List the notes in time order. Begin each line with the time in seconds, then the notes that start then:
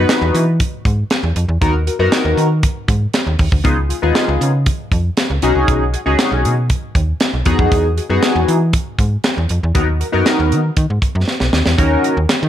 Already playing: B3 D#4 F#4 B4
0.09 snare, clap, closed hi-hat
0.22 E2
0.34 E3, closed hi-hat
0.60 kick, closed hi-hat
0.85 G#2, kick, closed hi-hat
1.10 snare, clap, closed hi-hat
1.23 E2
1.36 F2, closed hi-hat
1.48 E2
1.61 D#2 B3 D#4 F#4 A#4, kick, closed hi-hat
1.87 F#4 A#4, closed hi-hat
1.99 F#2 B3 D#4 F#4 A#4
2.12 snare, clap, closed hi-hat
2.25 D#2
2.37 D#3, closed hi-hat
2.63 kick, closed hi-hat
2.88 G#2, kick, closed hi-hat
3.14 snare, clap, closed hi-hat
3.27 D#2
3.39 D#2, kick, open hi-hat
3.52 D2, kick
3.64 C#2 B3 D#4 F4 G#4, kick, closed hi-hat
3.89 F4 G#4, closed hi-hat
4.02 D#2 B3 D#4 F4 G#4
4.15 snare, clap, closed hi-hat
4.28 C#2
4.41 C#3, closed hi-hat
4.66 kick, closed hi-hat
4.92 F2, kick, closed hi-hat
5.17 snare, clap, closed hi-hat
5.30 C#2
5.42 B1 C#4 D#4 F#4 G#4, closed hi-hat
5.55 C2
5.68 B1, kick, closed hi-hat
5.93 F#4 G#4, closed hi-hat
6.06 C#2 C#4 D#4 F#4 G#4
6.19 snare, clap, closed hi-hat
6.32 B1
6.45 B2, closed hi-hat
6.70 kick, closed hi-hat
6.95 D#2, kick, closed hi-hat
7.20 snare, clap, closed hi-hat
7.34 B1
7.45 E2 B3 D#4 F#4 G#4, kick, closed hi-hat
7.59 F2, kick
7.72 E2, kick, closed hi-hat
7.97 F#4 G#4, closed hi-hat
8.09 F#2 B3 D#4 F#4 G#4
8.23 snare, clap, closed hi-hat
8.36 E2
8.48 E3, closed hi-hat
8.73 kick, closed hi-hat
8.98 G#2, kick, closed hi-hat
9.24 snare, clap, closed hi-hat
9.37 E2
9.49 F2, closed hi-hat
9.63 E2
9.74 D#2 B3 D#4 F#4 A#4, kick, closed hi-hat
10.00 F#4 A#4, closed hi-hat
10.12 F#2 B3 D#4 F#4 A#4
10.26 snare, clap, closed hi-hat
10.39 D#2
10.52 D#3, closed hi-hat
10.77 D#3, kick, closed hi-hat
10.90 G#2
11.02 kick, closed hi-hat
11.15 F#2
11.28 snare
11.40 B1, snare
11.53 D#2, snare
11.66 E2, snare
11.78 D#2 C#4 D#4 F#4 A#4, kick, closed hi-hat
12.04 closed hi-hat
12.17 D#2
12.29 D#3, snare, clap, closed hi-hat
12.43 D#3